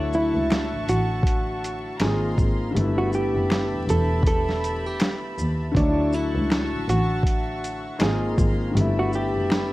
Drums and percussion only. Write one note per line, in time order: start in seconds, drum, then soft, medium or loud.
0.13 shaker soft
0.50 finger snap medium
0.50 snare medium
0.50 closed hi-hat medium
0.89 closed hi-hat soft
0.89 shaker soft
1.23 kick medium
1.23 closed hi-hat medium
1.64 closed hi-hat soft
1.64 shaker soft
2.00 finger snap medium
2.00 snare loud
2.00 closed hi-hat medium
2.38 kick medium
2.38 shaker medium
2.77 closed hi-hat medium
3.13 shaker soft
3.50 finger snap medium
3.50 snare medium
3.50 closed hi-hat medium
3.89 closed hi-hat soft
3.89 shaker soft
4.23 kick medium
4.23 closed hi-hat loud
4.49 snare soft
4.64 closed hi-hat soft
4.64 shaker soft
5.00 finger snap medium
5.00 snare loud
5.00 closed hi-hat medium
5.38 shaker medium
5.75 kick loud
5.75 closed hi-hat medium
6.13 shaker soft
6.50 finger snap medium
6.50 snare loud
6.50 closed hi-hat medium
6.89 closed hi-hat soft
6.89 shaker soft
7.23 kick medium
7.23 closed hi-hat medium
7.64 closed hi-hat soft
7.64 shaker soft
8.00 finger snap medium
8.00 snare loud
8.00 closed hi-hat medium
8.38 kick loud
8.38 shaker medium
8.77 closed hi-hat medium
9.13 shaker soft
9.50 finger snap medium
9.50 snare medium
9.50 closed hi-hat medium